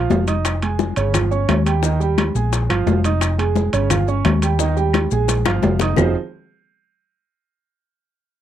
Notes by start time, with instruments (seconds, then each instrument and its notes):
Already playing: grand piano F3 F4 F5
0.10 fingered electric bass F1, high bongo, low bongo, high conga, low timbale, maracas
0.27 grand piano D#4 D#5 D#6, high conga, high timbale, maracas
0.45 high bongo, high conga, high timbale, claves, maracas
0.61 grand piano G#3 G#4 G#5, high bongo, high conga, high timbale, maracas
0.79 high bongo, high conga, low timbale, maracas
0.96 fingered electric bass G1, grand piano C#3 C#4 C#5, high bongo, high timbale, maracas
1.13 grand piano F3 F4 F5, high bongo, high conga, low conga, high timbale, claves, maracas
1.31 grand piano C#4 C#5 C#6, high bongo, high conga, maracas
1.49 fingered electric bass D#2, high bongo, low bongo, high conga, high timbale, low timbale, claves, maracas
1.66 grand piano G3 G4 G5, high conga, high timbale, maracas
1.83 grand piano D#3 D#4 D#5, high bongo, high conga, maracas
2.00 grand piano G3 G4 G5, high bongo, high conga, maracas
2.18 high bongo, high conga, high timbale, low timbale, claves, maracas
2.35 fingered electric bass A#1, grand piano G#3 G#4 G#5, high bongo, maracas
2.52 high bongo, high conga, high timbale, maracas
2.70 fingered electric bass G1, grand piano F3 F4 F5, high bongo, high conga, high timbale, claves, maracas
2.87 fingered electric bass F1, high bongo, low bongo, high conga, low timbale, maracas
3.04 grand piano D#4 D#5 D#6, high conga, high timbale, maracas
3.21 high bongo, high conga, high timbale, claves, maracas
3.38 grand piano G#3 G#4 G#5, high bongo, high conga, high timbale, maracas
3.56 high bongo, high conga, low timbale, maracas
3.73 fingered electric bass G1, grand piano C#3 C#4 C#5, high bongo, high timbale, maracas
3.90 grand piano F3 F4 F5, high bongo, high conga, low conga, high timbale, claves, maracas
4.07 grand piano C#4 C#5 C#6, high bongo, high conga, maracas
4.25 fingered electric bass D#2, high bongo, low bongo, high conga, high timbale, low timbale, claves, maracas
4.42 grand piano G3 G4 G5, high conga, high timbale, maracas
4.59 grand piano D#3 D#4 D#5, high bongo, maracas
4.77 grand piano G3 G4 G5, high bongo, high conga, maracas
4.93 high bongo, high conga, high timbale, low timbale, claves, maracas
5.11 fingered electric bass A#1, grand piano G#3 G#4 G#5, high bongo, maracas
5.28 high bongo, high conga, high timbale, maracas
5.45 fingered electric bass G1, grand piano F3 F4 F5, high bongo, high conga, high timbale, claves, maracas
5.62 fingered electric bass F1, low bongo, high conga, low timbale, maracas
5.79 grand piano D#4 D#5 D#6, low bongo, high timbale, maracas
5.96 fingered electric bass F1, grand piano F3 C4 D#4 F4 G#4 C5, low bongo, low conga, low timbale, claves, maracas